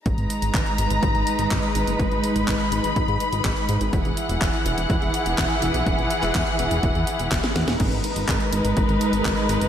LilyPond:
<<
  \new Staff \with { instrumentName = "String section" } { \time 4/4 \key gis \minor \tempo 4 = 124 << { ais''1 | b''1 | fis''1~ | fis''1 |
b'1 | } \\ { <gis dis' b'>1~ | <gis dis' b'>1 | <e e' gis'>1~ | <e e' gis'>1 |
<gis dis' ais'>1 | } >> }
  \new Staff \with { instrumentName = "Analog synth bass" } { \clef bass \time 4/4 \key gis \minor gis,,16 gis,,16 r16 gis,,16 gis,,16 r16 gis,,16 gis,,16 gis,,16 gis,,16 r16 gis,,16 gis,,16 r16 gis,,16 fis,,16 | gis,,16 gis,,16 r16 gis,,16 gis,,16 r16 gis,,16 gis,,16 gis,,16 gis,16 r16 gis,,16 gis,,16 r16 gis,16 gis,,16 | e,,16 e,,16 r16 e,,16 e,,16 r16 e,,16 e,,16 e,,16 e,,16 r16 e,,16 e,,16 r16 e,,16 b,,16 | e,,16 e,,16 r16 e,,16 e,,16 r16 e,,16 e,,16 e,,16 e,16 r16 e,,16 e,,16 r16 e,16 e,,16 |
gis,,16 gis,,16 r16 gis,,16 gis,,16 r16 gis,,16 gis,,16 gis,,16 gis,,16 r16 gis,,16 gis,,16 r16 gis,,16 fis,,16 | }
  \new DrumStaff \with { instrumentName = "Drums" } \drummode { \time 4/4 <hh bd>16 hh16 hh16 hh16 <hc hh bd>16 hh16 hh16 hh16 <hh bd>16 hh16 hh16 hh16 <hc hh bd>16 hh16 hh16 hh16 | <hh bd>16 hh16 hh16 hh16 <hc hh bd>16 hh16 hh16 hh16 <hh bd>16 hh16 hh16 hh16 <hc hh bd>16 hh16 hh16 hh16 | <hh bd>16 hh16 hh16 hh16 <hc hh bd>16 hh16 hh16 hh16 <hh bd>16 hh16 hh16 hh16 <hc hh bd>16 hh16 hh16 hh16 | <hh bd>16 hh16 hh16 <hc hh>16 <hc hh bd>16 hh16 hh16 hh16 <hh bd>16 hh16 hh16 hh16 <hc hh bd sn>16 <hh sn>16 <hh sn>16 <hh sn>16 |
<cymc hh bd>16 hh16 hh16 hh16 <hc hh bd>16 hh16 hh16 hh16 <hh bd>16 hh16 hh16 hh16 <hc hh bd>16 hh16 hh16 hh16 | }
>>